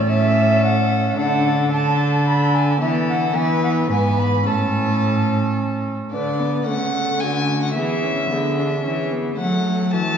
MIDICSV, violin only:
0, 0, Header, 1, 2, 480
1, 0, Start_track
1, 0, Tempo, 546946
1, 1029, Time_signature, 3, 2, 24, 8
1, 8930, End_track
2, 0, Start_track
2, 0, Title_t, "Violin"
2, 0, Program_c, 0, 40
2, 84, Note_on_c, 0, 69, 71
2, 1014, Note_off_c, 0, 69, 0
2, 1040, Note_on_c, 0, 69, 65
2, 1503, Note_off_c, 0, 69, 0
2, 1515, Note_on_c, 0, 69, 70
2, 2448, Note_off_c, 0, 69, 0
2, 2463, Note_on_c, 0, 69, 67
2, 2944, Note_on_c, 0, 71, 70
2, 2958, Note_off_c, 0, 69, 0
2, 3426, Note_off_c, 0, 71, 0
2, 3430, Note_on_c, 0, 71, 69
2, 3916, Note_on_c, 0, 69, 62
2, 3929, Note_off_c, 0, 71, 0
2, 5194, Note_off_c, 0, 69, 0
2, 5367, Note_on_c, 0, 74, 65
2, 5814, Note_off_c, 0, 74, 0
2, 5848, Note_on_c, 0, 78, 80
2, 6322, Note_on_c, 0, 80, 87
2, 6335, Note_off_c, 0, 78, 0
2, 6682, Note_off_c, 0, 80, 0
2, 6693, Note_on_c, 0, 78, 64
2, 6795, Note_off_c, 0, 78, 0
2, 6800, Note_on_c, 0, 76, 70
2, 7974, Note_off_c, 0, 76, 0
2, 8231, Note_on_c, 0, 78, 70
2, 8679, Note_off_c, 0, 78, 0
2, 8718, Note_on_c, 0, 81, 77
2, 8930, Note_off_c, 0, 81, 0
2, 8930, End_track
0, 0, End_of_file